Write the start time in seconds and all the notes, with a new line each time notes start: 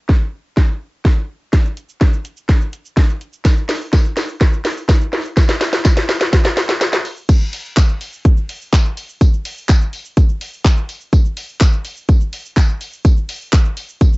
0.09 kick, snare
0.57 kick, snare
1.05 kick, snare
1.53 kick, snare, closed hi-hat, shaker
1.65 shaker
1.77 closed hi-hat, shaker
1.89 shaker
2.01 kick, snare, closed hi-hat, shaker
2.13 shaker
2.25 closed hi-hat, shaker
2.37 shaker
2.49 kick, snare, closed hi-hat, shaker
2.61 shaker
2.73 closed hi-hat, shaker
2.85 shaker
2.97 kick, snare, closed hi-hat, shaker
3.09 shaker
3.21 closed hi-hat, shaker
3.33 shaker
3.45 kick, snare, closed hi-hat, tambourine, shaker
3.57 shaker
3.69 snare, open hi-hat, tambourine, shaker
3.81 shaker
3.93 kick, snare, closed hi-hat, tambourine, shaker
4.05 shaker
4.17 snare, open hi-hat, tambourine, shaker
4.29 shaker
4.41 kick, snare, closed hi-hat, tambourine, shaker
4.53 shaker
4.65 snare, open hi-hat, shaker
4.77 shaker
4.89 kick, snare, closed hi-hat, tambourine, shaker
5.01 shaker
5.13 snare, open hi-hat, tambourine, shaker
5.25 shaker
5.37 kick, snare, closed hi-hat, tambourine, shaker
5.49 snare, shaker
5.61 snare, open hi-hat, tambourine, shaker
5.73 snare, shaker
5.85 kick, snare, closed hi-hat, tambourine, shaker
5.97 snare, shaker
6.09 snare, open hi-hat, tambourine, shaker
6.21 snare, shaker
6.33 kick, snare, closed hi-hat, shaker
6.45 snare, shaker
6.57 snare, open hi-hat, shaker
6.69 snare, shaker
6.81 snare, closed hi-hat, tambourine, shaker
6.93 snare, shaker
7.05 open hi-hat, tambourine, shaker
7.17 shaker
7.29 kick, closed hi-hat, crash, tambourine, shaker
7.41 shaker
7.53 open hi-hat, tambourine, shaker
7.65 shaker
7.77 kick, clap, closed hi-hat, tambourine, shaker
7.89 shaker
8.01 open hi-hat, tambourine, shaker
8.13 shaker
8.25 kick, closed hi-hat, shaker
8.37 shaker
8.49 open hi-hat, shaker
8.61 shaker
8.73 kick, clap, closed hi-hat, tambourine, shaker
8.85 shaker
8.97 open hi-hat, tambourine, shaker
9.09 shaker
9.21 kick, closed hi-hat, tambourine, shaker
9.33 shaker
9.45 open hi-hat, tambourine, shaker
9.57 shaker
9.69 kick, clap, closed hi-hat, tambourine, shaker
9.81 shaker
9.93 open hi-hat, tambourine, shaker
10.05 shaker
10.17 kick, closed hi-hat, tambourine, shaker
10.29 shaker
10.41 open hi-hat, tambourine, shaker
10.53 shaker
10.65 kick, clap, closed hi-hat, tambourine, shaker
10.77 shaker
10.89 open hi-hat, tambourine, shaker
11.01 shaker
11.13 kick, closed hi-hat, tambourine, shaker
11.25 shaker
11.37 open hi-hat, tambourine, shaker
11.49 shaker
11.61 kick, clap, closed hi-hat, tambourine, shaker
11.73 shaker
11.85 open hi-hat, tambourine, shaker
11.97 shaker
12.09 kick, closed hi-hat, tambourine, shaker
12.21 shaker
12.33 open hi-hat, tambourine, shaker
12.45 shaker
12.57 kick, clap, closed hi-hat, tambourine, shaker
12.69 shaker
12.81 open hi-hat, tambourine, shaker
12.93 shaker
13.05 kick, closed hi-hat, tambourine, shaker
13.17 shaker
13.29 open hi-hat, tambourine, shaker
13.41 shaker
13.53 kick, clap, closed hi-hat, tambourine, shaker
13.65 shaker
13.77 open hi-hat, tambourine, shaker
13.89 shaker
14.01 kick, closed hi-hat, tambourine, shaker
14.13 shaker